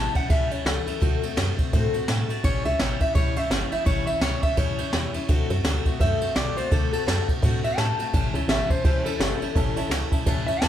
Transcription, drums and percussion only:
0.15 kick, ride
0.30 kick, ride
0.51 ride
0.66 snare, ride
0.87 ride
1.02 kick, ride
1.23 ride
1.37 snare, ride
1.59 kick, ride
1.73 kick, ride
1.94 ride
2.08 snare, ride
2.30 ride
2.44 kick, ride
2.65 ride
2.79 snare, ride
3.00 kick, ride
3.15 kick, ride
3.36 ride
3.51 snare, ride
3.72 ride
3.86 kick, ride
4.07 ride
4.21 snare, ride
4.43 kick, ride
4.57 kick, ride
4.78 ride
4.93 snare, ride
5.14 ride
5.29 kick, ride
5.50 ride
5.65 snare, ride
5.86 kick, ride
6.00 kick, ride
6.21 ride
6.36 snare, ride
6.57 ride
6.72 kick, ride
6.93 ride
7.08 snare, ride
7.28 kick, ride
7.43 kick, ride
7.64 ride
7.78 snare, ride
7.99 ride
8.14 kick, ride
8.35 ride
8.49 snare, ride
8.70 kick, ride
8.85 kick, ride
9.06 ride
9.20 snare, ride
9.42 ride
9.56 kick, ride
9.77 ride
9.91 snare, ride
10.12 kick, ride
10.26 kick, ride
10.48 ride
10.62 snare, ride

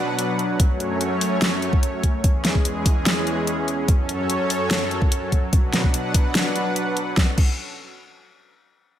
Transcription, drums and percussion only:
0.19 closed hi-hat
0.39 closed hi-hat
0.60 kick, closed hi-hat
0.80 closed hi-hat
1.01 closed hi-hat
1.21 open hi-hat
1.42 snare, closed hi-hat
1.62 closed hi-hat
1.73 kick
1.83 closed hi-hat
2.03 kick, closed hi-hat
2.24 kick, closed hi-hat
2.45 snare, closed hi-hat
2.55 kick
2.65 closed hi-hat
2.86 kick, open hi-hat
3.06 snare, closed hi-hat
3.27 closed hi-hat
3.47 closed hi-hat
3.68 closed hi-hat
3.88 kick, closed hi-hat
4.09 closed hi-hat
4.30 closed hi-hat
4.50 open hi-hat
4.71 snare, closed hi-hat
4.91 closed hi-hat
5.02 kick
5.12 closed hi-hat
5.32 kick, closed hi-hat
5.53 kick, closed hi-hat
5.73 snare, closed hi-hat
5.84 kick
5.94 closed hi-hat
6.14 kick, open hi-hat
6.35 snare, closed hi-hat
6.56 closed hi-hat
6.76 closed hi-hat
6.97 closed hi-hat
7.17 kick, snare
7.38 kick, crash

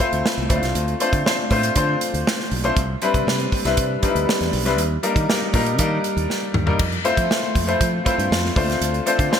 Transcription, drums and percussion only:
0.00 kick
0.13 closed hi-hat
0.26 snare
0.50 kick, closed hi-hat
0.63 snare, closed hi-hat
0.75 closed hi-hat
0.88 closed hi-hat
1.00 closed hi-hat
1.13 kick, closed hi-hat
1.26 snare
1.50 kick, open hi-hat
1.63 closed hi-hat
1.75 kick, closed hi-hat
2.01 closed hi-hat
2.14 closed hi-hat
2.27 snare
2.40 snare
2.51 open hi-hat
2.64 closed hi-hat
2.76 kick, closed hi-hat
3.02 closed hi-hat
3.14 kick, closed hi-hat
3.28 snare
3.39 closed hi-hat
3.52 kick, open hi-hat
3.65 snare, closed hi-hat
3.77 kick, closed hi-hat
4.03 kick, closed hi-hat
4.16 closed hi-hat
4.29 snare
4.41 snare, closed hi-hat
4.53 open hi-hat
4.66 snare, closed hi-hat
4.78 closed hi-hat
5.03 closed hi-hat
5.16 kick, closed hi-hat
5.30 snare
5.54 kick, open hi-hat
5.66 closed hi-hat
5.79 kick, closed hi-hat
6.04 closed hi-hat
6.18 closed hi-hat
6.30 snare
6.54 mid tom
6.67 floor tom
6.79 kick, crash
6.92 closed hi-hat
7.05 closed hi-hat
7.17 kick, closed hi-hat
7.31 snare
7.55 kick, open hi-hat
7.69 closed hi-hat
7.81 kick, closed hi-hat
8.06 kick, closed hi-hat
8.19 closed hi-hat
8.32 snare
8.45 snare
8.56 kick, open hi-hat
8.70 snare, closed hi-hat
8.82 closed hi-hat
8.94 closed hi-hat
9.07 closed hi-hat
9.19 kick, closed hi-hat
9.33 snare

